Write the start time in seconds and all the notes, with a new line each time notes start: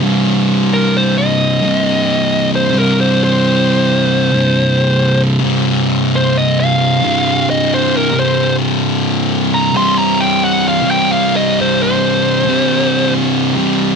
0.00 G2 C3
0.04 C2
0.74 A#4
0.97 C5
1.18 D#5
1.62 C2 G2 C3
2.56 C5
2.71 G2 C3
2.75 C2
2.79 A#4
3.01 C5
3.24 C5
4.32 C2 G2 C3
5.40 C2 G2 C3
6.16 C5
6.38 D#5
6.60 F5
7.02 C2 G2 C3
7.50 D#5
7.74 C5
7.97 A#4
8.10 C2 G2 C3
8.20 C5
9.54 A#5
9.73 C2 G2 C3
9.77 C6
9.98 A#5
10.20 G5
10.44 F#5
10.68 F5
10.82 G2 C3
10.86 C2
10.91 G5
11.12 F5
11.36 D#5
11.61 C5
11.83 C5
12.45 C2 G2
12.49 C3
13.54 C2 G2 C3